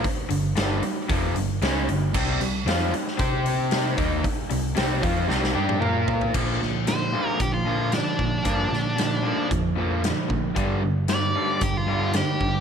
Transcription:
0.04 muted overdriven electric guitar stroke, muted distorted electric guitar stroke, muted picked electric bass stroke, kick, open hi-hat
0.29 G1 G2 D3, open hi-hat
0.56 G1 G2 D3 G3, snare, open hi-hat
0.83 muted overdriven electric guitar stroke, muted picked electric bass stroke, muted distorted electric guitar stroke, open hi-hat
1.09 F1 F2 C3 F3, kick, open hi-hat
1.36 G1 G2 D3, open hi-hat
1.62 C#2 C#3 G#3 C#4, snare, open hi-hat
1.88 G1 G2 D3, open hi-hat
2.14 C2 C3 G3 C4, kick, crash
2.40 C2 C3 G3, open hi-hat
2.66 F2 F3 C4 F4, snare, open hi-hat
2.92 muted overdriven electric guitar stroke, muted picked electric bass stroke, muted distorted electric guitar stroke, open hi-hat
3.08 snare
3.18 C3 C4 G4 C5, kick, open hi-hat
3.46 open hi-hat
3.71 snare, open hi-hat
3.96 D#2 D#3 A#3 D#4, kick, open hi-hat
4.24 muted picked electric bass stroke, muted overdriven electric guitar stroke, muted distorted electric guitar stroke, kick, open hi-hat
4.50 C2 C3 G3, open hi-hat
4.75 C2 C3 G3 C4, snare, open hi-hat
5.01 F2 F3 C4 F4, kick, open hi-hat
5.28 C2 C3 G3 C4, snare
5.44 snare
5.54 G2 G3 D4 G4
5.69 high tom
5.80 A#2 A#3 F4 A#4, mid tom
6.08 floor tom
6.21 floor tom
6.33 A#2 D3 F3 A#3, kick, crash
6.61 A#2 D3 F3, snare
6.87 A#2 D3 F3 C5, snare, closed hi-hat
7.13 A#2 D3 F3 A#3
7.27 A#4
7.40 A#2 D3 F3 G4, kick, closed hi-hat
7.54 F4
7.65 A#2 D3 F3 A#3
7.92 A#2 D3 F3 D4, snare, closed hi-hat
8.19 A#2 D3 F3, kick
8.44 G2 A#2 D3 F3 A#3, kick, closed hi-hat
8.70 A#2 D3 F3, snare
8.96 A#2 D3 F3, snare, closed hi-hat
9.23 A#2 D3 F3 A#3
9.48 F2 A#2 D3 F3, kick, closed hi-hat
9.76 A#2 D3 F3 A#3
10.02 A#2 D3 F3, snare, closed hi-hat
10.28 A#2 D3 F3, kick
10.55 G2 D3 G3, kick, closed hi-hat
10.83 G2 D3
11.08 G2 D3 D5, snare, closed hi-hat
11.36 G2 D3 G3
11.61 G2 D3 G4, kick, closed hi-hat
11.77 F4
11.87 G2 D3 G3
12.13 G2 D3 G4, snare, closed hi-hat
12.40 G2 D3, kick

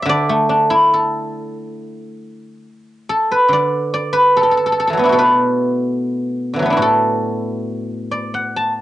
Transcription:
Already playing: F#5
0.02 D3 E5
0.09 D5
0.29 A3
0.49 D4
0.70 E4
0.94 A4
3.09 A4
3.31 B4
3.48 D3
3.53 D5
3.94 D5
4.13 B4
4.37 A4
4.43 A4
4.51 A4
4.57 A4
4.66 A4
4.72 A4
4.80 A4
4.87 E3 A4
4.93 F#3
4.97 A3 B3
5.04 D4 E4
5.09 B2 F#4 A4
5.19 B4
6.54 D3 E3
6.59 F#3 A3
6.66 B3
6.70 D4 E4
6.77 A2 F#4
6.82 A4
8.11 D5
8.34 F#5
8.56 A5

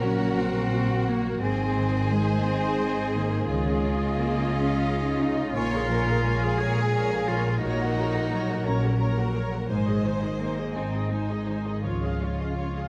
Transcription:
Already playing: A#1 A#2 C#3 A#3 F#4 A#4 F#5
0.03 F#3 C#4
0.38 C4 F#4
1.08 A#3
1.42 G#1 G#2 C4 G#4 C5 D#5
1.76 D#3
2.11 G#3
2.46 C4 D#4
2.80 C4
3.15 D#3 A#3
3.49 C#2 C#3 G#3 F4 D#5 F5
3.84 C#4
4.18 G#3 A#3
4.53 C#4 F4
4.86 D#4
5.20 C#4 D#4
5.53 A#1 A#2 F4 A#4 C#5 G#5
5.73 G#4 A#4 F5
5.89 F3 A#4 C#5 G#5
6.07 G#4 A#4 F5
6.23 G#3 G#4 A#4 C#5 G#5
6.42 G#4 A#4 F5
6.58 A#1 A#2 F4 G#4 A#4 C#5 G#5
6.77 G#4 A#4 F5
6.93 C#4 A#4 C#5 G#5
7.11 G#4 A#4 F5
7.27 F3 F4 A#4 C#5 G#5
7.47 G#4 A#4 F5
7.61 A#1 A#2 D#4 F#4 A#4 C#5 A#5
7.81 F#4 A#4 F#5
7.96 A#3 A#4 C#5 A#5
8.14 F#4 A#4 F#5
8.31 F#3 A#4 C#5 A#5
8.49 F#4 A#4 F#5
8.64 A#1 A#2 C#4 F#4 A#4 C#5 A#5
8.82 F#4 A#4 F#5
8.99 C#4 A#4 C#5 A#5
9.17 F#4 A#4 F#5
9.34 A#3 A#4 C#5 A#5
9.52 F#4 A#4 F#5
9.69 G#1 G#2 G#3 D#4 C5 G#5
9.86 G#4 D#5
10.04 D#3 D#4 C5 G#5
10.22 G#4 D#5
10.39 G#3 A#3 D#4 C5 G#5
10.57 G#4 D#5
10.74 G#1 G#2 C4 D#4 C5 G#5
10.93 G#4 D#5
11.10 G#3 C4 D#4 C5 G#5
11.29 G#4 D#5
11.47 D#3 D#4 C5 G#5
11.65 G#4 D#5
11.83 C#2 C#3 F3 F4 C#5 F5
12.02 G#4 D#5 F5
12.19 G#3 F4 C#5 F5
12.37 G#4 D#5 F5
12.56 C#4 F4 C#5 F5
12.75 G#4 D#5 F5

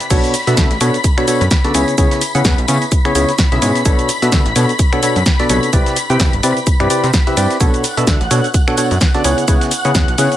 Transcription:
0.00 snare, closed hi-hat, shaker
0.10 B1 B2 B3 D4 F#4 A4 C#5 B5 B6, kick, closed hi-hat, crash, tambourine, shaker
0.24 closed hi-hat, tambourine, shaker
0.34 open hi-hat, tambourine, shaker
0.47 B2 B3 D4 F#4 A4 E5, closed hi-hat, tambourine, shaker
0.57 D2, kick, snare, closed hi-hat, tambourine, shaker
0.71 A1, snare, closed hi-hat, tambourine
0.80 B2 B3 D4 F#4 A4 C#5, snare, open hi-hat, tambourine, shaker
0.94 closed hi-hat, tambourine, shaker
1.04 kick, closed hi-hat, tambourine, shaker
1.18 B2 B3 D4 F#4 A4 C#5, finger snap, closed hi-hat, tambourine
1.28 B2 B3 D4 F#4 A4 C#5, open hi-hat, tambourine, shaker
1.41 F#2, closed hi-hat, tambourine, shaker
1.51 kick, snare, closed hi-hat, tambourine, shaker
1.64 C#3 B3 D4 F#4 A4 D5, snare, closed hi-hat, tambourine
1.74 C#2 C#3 B3 C#4 E4 G#4 C#5, open hi-hat, tambourine, shaker
1.88 closed hi-hat, tambourine, shaker
1.98 C#2 C#3 B3 C#4 E4 G#4 C#5, kick, closed hi-hat, tambourine, shaker
2.11 snare, closed hi-hat, tambourine, shaker
2.21 open hi-hat, tambourine, shaker
2.34 C#3 B3 C#4 E4 G#4 F#5, closed hi-hat, tambourine, shaker
2.45 E2, kick, snare, closed hi-hat, tambourine, shaker
2.58 B1, closed hi-hat, tambourine
2.68 C#3 B3 C#4 E4 G#4 C#5, open hi-hat, tambourine, shaker
2.82 closed hi-hat, tambourine, shaker
2.92 kick, closed hi-hat, shaker
3.05 C#3 B3 C#4 E4 G#4 C#5, finger snap, closed hi-hat, tambourine
3.15 C#2 C#3 B3 C#4 E4 G#4 C#5, open hi-hat, tambourine, shaker
3.29 snare, closed hi-hat, tambourine, shaker
3.38 kick, snare, closed hi-hat, tambourine, shaker
3.52 B1 C#3 B3 C#4 E4 G#4 E5, snare, closed hi-hat, tambourine
3.62 G#2 B2 B3 C#4 E4 G#4 C#5, open hi-hat, tambourine, shaker
3.75 snare, closed hi-hat, tambourine, shaker
3.85 B1 B2 B3 D4 F#4 A4 C#5, kick, closed hi-hat, tambourine, shaker
3.98 closed hi-hat, tambourine, shaker
4.09 open hi-hat, tambourine, shaker
4.22 B2 B3 D4 F#4 A4 E5, closed hi-hat, tambourine, shaker
4.32 D2, kick, snare, closed hi-hat, tambourine, shaker
4.46 A1, snare, closed hi-hat
4.56 B2 B3 D4 F#4 A4 C#5, snare, open hi-hat, tambourine, shaker
4.69 closed hi-hat, tambourine, shaker
4.79 kick, closed hi-hat, tambourine, shaker
4.93 B2 B3 D4 F#4 A4 C#5, finger snap, closed hi-hat, tambourine
5.03 B2 B3 D4 F#4 A4 C#5, open hi-hat, tambourine, shaker
5.15 F#2, closed hi-hat, tambourine, shaker
5.26 kick, snare, closed hi-hat, shaker
5.39 B2 B3 D4 F#4 A4 D5, snare, closed hi-hat, tambourine
5.49 B1 C3 B3 D4 F#4 A4 C#5, open hi-hat, tambourine, shaker
5.63 closed hi-hat, tambourine, shaker
5.73 C2 C3 C4 E4 G4 B4 D5, kick, closed hi-hat, tambourine, shaker
5.86 snare, closed hi-hat, tambourine, shaker
5.96 open hi-hat, tambourine, shaker
6.09 C3 C4 E4 G4 B4 G5, closed hi-hat, tambourine, shaker
6.20 E2, kick, snare, closed hi-hat, tambourine, shaker
6.33 G1, closed hi-hat, tambourine
6.43 C3 C4 E4 G4 B4 D5, open hi-hat, tambourine, shaker
6.57 closed hi-hat, tambourine, shaker
6.67 kick, closed hi-hat, tambourine, shaker
6.80 G2 C3 C4 E4 G4 B4 D5, finger snap, closed hi-hat, tambourine
6.90 C3 C4 E4 G4 B4 D5, open hi-hat, tambourine, shaker
7.04 C3, snare, closed hi-hat, tambourine, shaker
7.14 kick, snare, closed hi-hat, tambourine, shaker
7.27 C3 C4 E4 G4 B4 E5, snare, closed hi-hat, tambourine
7.37 G2 C4 E4 G4 B4 D5, open hi-hat, tambourine, shaker
7.50 snare, closed hi-hat, tambourine, shaker
7.60 B1 B2 B3 D4 F#4 A4 C#5 F#5 F#6, kick, closed hi-hat, tambourine, shaker
7.73 closed hi-hat, tambourine, shaker
7.84 open hi-hat, tambourine, shaker
7.97 B2 B3 D4 F#4 A4 E5, closed hi-hat, tambourine, shaker
8.07 D2, kick, snare, closed hi-hat, tambourine, shaker
8.21 A1, snare, closed hi-hat, tambourine
8.31 B2 B3 D4 F#4 A4 C#5, snare, open hi-hat, tambourine, shaker
8.44 closed hi-hat, tambourine, shaker
8.54 kick, closed hi-hat, tambourine, shaker
8.68 B2 B3 D4 F#4 A4 C#5, finger snap, closed hi-hat, tambourine
8.77 B2 B3 D4 F#4 A4 C#5, open hi-hat, tambourine, shaker
8.91 F#2, closed hi-hat, tambourine, shaker
9.01 kick, snare, closed hi-hat, tambourine, shaker
9.14 C#3 B3 D4 F#4 A4 D5, snare, closed hi-hat, tambourine
9.24 C#2 C#3 B3 C#4 E4 G#4 C#5, open hi-hat, tambourine, shaker
9.38 closed hi-hat, tambourine, shaker
9.48 C#2 C#3 B3 C#4 E4 G#4 C#5, kick, closed hi-hat, tambourine, shaker
9.61 snare, closed hi-hat, tambourine, shaker
9.71 open hi-hat, tambourine, shaker
9.84 C#3 B3 C#4 E4 G#4 F#5, closed hi-hat, tambourine, shaker
9.94 E2, kick, snare, closed hi-hat, tambourine, shaker
10.08 B1, closed hi-hat, tambourine
10.18 C#3 B3 C#4 E4 G#4 C#5, open hi-hat, tambourine, shaker
10.31 closed hi-hat, tambourine, shaker

